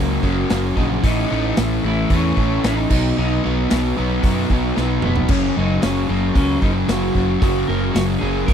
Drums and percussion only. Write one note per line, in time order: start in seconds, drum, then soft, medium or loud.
0.23 kick medium
0.50 snare loud
0.50 open hi-hat medium
0.77 kick medium
1.04 kick loud
1.04 open hi-hat medium
1.57 snare loud
1.57 open hi-hat medium
2.10 kick loud
2.10 open hi-hat medium
2.37 kick medium
2.64 snare loud
2.64 open hi-hat medium
2.90 kick loud
2.90 crash loud
3.70 snare loud
3.70 open hi-hat medium
4.23 kick loud
4.23 open hi-hat medium
4.50 kick medium
4.77 snare medium
5.02 mid tom medium
5.16 floor tom medium
5.28 kick loud
5.28 crash loud
5.82 snare loud
5.82 open hi-hat medium
6.36 kick loud
6.36 open hi-hat medium
6.62 kick medium
6.89 snare loud
6.89 open hi-hat medium
7.15 kick medium
7.42 kick loud
7.42 open hi-hat medium
7.95 snare loud
7.95 open hi-hat medium
8.48 kick loud
8.48 open hi-hat medium